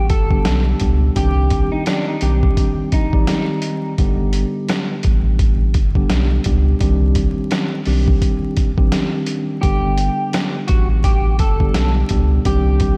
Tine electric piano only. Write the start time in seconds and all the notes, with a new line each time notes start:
Already playing: D3 G3 B3 D4 G4
0.30 D3 G3 B3 D4 G4
0.81 B2 G3 B3 D4 G4
1.15 D#3 G3 C4 D4 G4
2.22 D#3 G3 C4 D4 G4
3.13 D#3 G3 C4 G4 D5
3.99 D3 G3 B3 D4 G4
5.95 D3 G3 B3 D4 G4
6.45 B2 G3 B3 D4 G4
6.80 D#3 G3 C4 D4 G4
7.86 D#3 G3 C4 D4 G4
8.77 D#3 G3 C4 D4 G4
9.63 D3 G3 B3 D4 G4
11.60 D3 G3 B3 D4 G4
12.10 B2 G3 B3 D4 G4
12.45 D#3 G3 C4 D4 G4